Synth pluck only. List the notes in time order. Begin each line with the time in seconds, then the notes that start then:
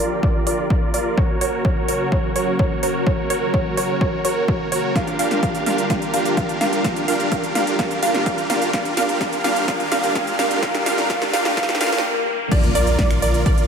0.00 D5
0.23 D5
0.47 D5
0.70 D5
0.94 D5
1.18 C#5
1.41 C#5
1.65 C#5
1.89 C#5
2.12 C#5
2.36 C#5
2.59 C#5
2.83 C#5
3.07 C#5
3.30 C#5
3.54 C#5
3.77 C#5
4.01 C#5
4.25 C#5
4.48 C#5
4.72 C#5
4.96 F5
5.19 F5
5.43 F5
5.66 F5
5.90 F5
6.14 F5
6.37 F5
6.61 F5
6.85 F5
7.08 F5
7.32 F5
7.55 F5
7.79 F5
8.03 F5
8.26 F5
8.50 F5
8.73 F5
8.97 F5
9.21 F5
9.44 F5
9.68 F5
9.92 F5
10.15 F5
10.39 F5
10.63 F5
10.86 F5
11.10 F5
11.33 F5
11.57 F5
11.81 F5
12.52 D5
12.75 D5
12.99 D5
13.22 D5
13.46 D5